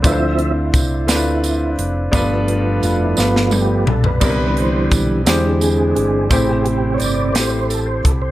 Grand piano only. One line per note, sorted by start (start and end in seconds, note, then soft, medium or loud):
0.02 1.05 D3 medium
0.02 0.67 A3 medium
0.02 0.68 C4 medium
0.02 0.68 D4 medium
0.02 0.69 F4 medium
0.02 0.11 B4 medium
0.12 0.72 C5 medium
1.07 1.72 A3 medium
1.07 1.72 C4 medium
1.07 1.73 D4 medium
1.07 1.16 E4 soft
1.07 1.74 B4 medium
1.16 1.77 F4 medium
2.12 3.14 G2 medium
2.12 2.77 G3 medium
2.12 2.77 B3 medium
2.12 2.77 D4 medium
2.12 2.78 F4 medium
2.12 2.78 B4 loud
3.17 3.81 G3 medium
3.17 3.82 B3 medium
3.17 3.82 D4 medium
3.17 3.82 F4 medium
3.17 3.83 B4 medium
4.20 5.22 E3 medium
4.20 4.85 G3 medium
4.20 4.86 B3 medium
4.20 4.86 C4 medium
4.20 4.86 E4 medium
4.20 4.29 A#4 medium
4.30 4.90 B4 medium
5.26 6.27 E3 medium
5.26 5.90 G#3 medium
5.26 5.91 D4 medium
5.26 5.91 E4 medium
5.26 5.91 G4 medium
5.26 5.92 C5 medium
6.29 7.31 A2 medium
6.29 6.94 A3 medium
6.29 6.95 C4 medium
6.29 6.95 E4 medium
6.29 6.95 G4 medium
6.29 6.96 C5 medium
7.33 7.98 A3 medium
7.33 7.99 C4 medium
7.33 8.00 E4 medium
7.33 8.00 G4 medium
7.33 8.00 C5 medium